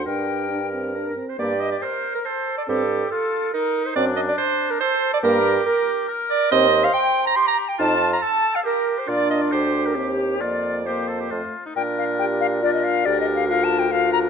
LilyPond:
<<
  \new Staff \with { instrumentName = "Flute" } { \time 3/4 \key g \minor \tempo 4 = 140 g''2 bes'8. c''16 | d''8 ees''16 d''16 c''8. bes'16 c''8. d''16 | a'4 a'4 bes'8. c''16 | d''8 ees''16 d''16 c''8. bes'16 c''8. d''16 |
bes'4 bes'4 r8 d''8 | \key bes \major ees''8. f''16 g''8. bes''16 c'''16 bes''8 g''16 | a''8. bes''16 a''8. f''16 bes'8. c''16 | d''8 ees''16 d''16 c''8. bes'16 g'4 |
d''4 c''4. r8 | g''8 f''8 g''8 f''8 d''16 ees''16 f''8 | \tuplet 3/2 { d''8 ees''8 f''8 f''8 a''8 g''8 } f''8 bes''8 | }
  \new Staff \with { instrumentName = "Clarinet" } { \time 3/4 \key g \minor bes'2 bes'8. c''16 | d''8 ees''16 d''16 c''8. bes'16 c''8. d''16 | a'4 a'4 bes'8. c''16 | d''8 ees''16 d''16 c''8. bes'16 c''8. d''16 |
bes'4 bes'4 r8 d''8 | \key bes \major ees''8. f''16 g''8. bes''16 c'''16 bes''8 g''16 | a''8. bes''16 a''8. f''16 bes'8. c''16 | d''8 ees''16 d''16 c''8. bes'16 g'4 |
d''4 c''4. r8 | d'2 d'4 | d'4 d'4 d'4 | }
  \new Staff \with { instrumentName = "Oboe" } { \time 3/4 \key g \minor bes'2~ bes'8 r8 | g'4 bes'4 a'4 | g'4 f'4 ees'4 | d'2 a'4 |
g'2 bes'4 | \key bes \major c''2 g'4 | f'4 a'4 g'4 | f'4 g'4. r8 |
f'4 g'8 a'16 g'16 f'8. ees'16 | bes'2 bes'4 | bes'4 bes'4 bes'4 | }
  \new Staff \with { instrumentName = "French horn" } { \time 3/4 \key g \minor d'4 d'8 c'8 d'8 c'8 | bes8 r2 r8 | c'8 r2 r8 | c'8 r2 r8 |
bes8 r2 r8 | \key bes \major c'8 r2 r8 | ees'8 r2 r8 | d'2 c'4 |
bes4 bes4 a8 r8 | r4 g'4 f'4 | g'4 f'4 f'4 | }
  \new Staff \with { instrumentName = "Bassoon" } { \clef bass \time 3/4 \key g \minor g,2~ g,8 r8 | g,4 r2 | g,4 r2 | fis,4 r2 |
g,4 r2 | \key bes \major ees,4 r2 | f,4 r2 | bes,4 d,4 ees,4 |
f,2 f,8 r8 | bes,2. | d,2. | }
>>